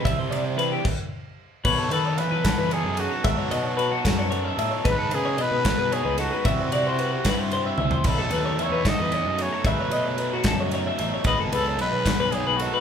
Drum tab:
CC |------x-----|x-----------|------------|------------|
RD |x-x-x-------|--x-x-x-x-x-|x-x-x-x-x-x-|x-x-x-x-x-x-|
SD |------------|------o-----|------o-----|------o-----|
T1 |------------|------------|------------|------------|
FT |------------|------------|------------|------------|
BD |o-----o-----|o-----o-----|o-----o-----|o-----o-----|

CC |------------|x-----------|------------|------------|
RD |x-x-x-x-x---|x-x-x-x-x-x-|x-x-x-x-x-x-|x-x-x-x-x-x-|
SD |------o-----|------o-----|------o-----|------o-----|
T1 |----------o-|------------|------------|------------|
FT |-----------o|------------|------------|------------|
BD |o-----o-----|o-----o-----|o-----o-----|o-----o-----|